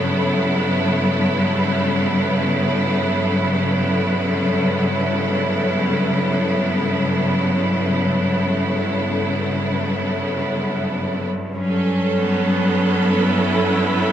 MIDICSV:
0, 0, Header, 1, 2, 480
1, 0, Start_track
1, 0, Tempo, 500000
1, 13557, End_track
2, 0, Start_track
2, 0, Title_t, "String section"
2, 0, Program_c, 0, 48
2, 0, Note_on_c, 0, 43, 52
2, 0, Note_on_c, 0, 49, 50
2, 0, Note_on_c, 0, 54, 52
2, 0, Note_on_c, 0, 59, 51
2, 0, Note_on_c, 0, 64, 52
2, 0, Note_on_c, 0, 69, 51
2, 10826, Note_off_c, 0, 49, 0
2, 10829, Note_off_c, 0, 64, 0
2, 10830, Note_off_c, 0, 54, 0
2, 10832, Note_off_c, 0, 43, 0
2, 10835, Note_off_c, 0, 59, 0
2, 10841, Note_on_c, 0, 43, 59
2, 10842, Note_off_c, 0, 69, 0
2, 11091, Note_on_c, 0, 54, 59
2, 11100, Note_on_c, 0, 61, 63
2, 11197, Note_on_c, 0, 69, 56
2, 11661, Note_on_c, 0, 59, 69
2, 12523, Note_on_c, 0, 64, 63
2, 13557, Note_off_c, 0, 43, 0
2, 13557, Note_off_c, 0, 54, 0
2, 13557, Note_off_c, 0, 59, 0
2, 13557, Note_off_c, 0, 61, 0
2, 13557, Note_off_c, 0, 64, 0
2, 13557, Note_off_c, 0, 69, 0
2, 13557, End_track
0, 0, End_of_file